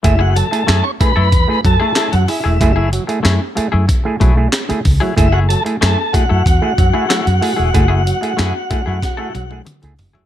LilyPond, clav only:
\new Staff \with { instrumentName = "Clav" } { \time 4/4 \key fis \minor \tempo 4 = 94 <a e' gis'>16 r16 fis16 <a e' gis'>16 r8 <a e' gis'>16 r8 <a e' gis'>16 fis16 <a e' gis'>16 <e' gis'>16 fis16 <e' gis'>16 r16 | <a e' gis'>16 r16 fis16 <a e' gis'>16 r8 <a e' gis'>16 r8 <a e' gis'>16 fis16 <a e' gis'>16 r16 <a e' gis'>16 r16 fis16 | <a e' gis'>16 r16 fis16 <a e' gis'>16 r8 <a e' gis'>16 r8 <a e' gis'>16 fis16 <a e' gis'>16 fis16 r16 <a e' gis'>16 <e' gis'>16 | <a e' gis'>16 r16 fis16 <a e' gis'>16 r8 <a e' gis'>16 r8 <a e' gis'>16 fis16 <a e' gis'>16 r16 <a e' gis'>16 r16 fis16 | }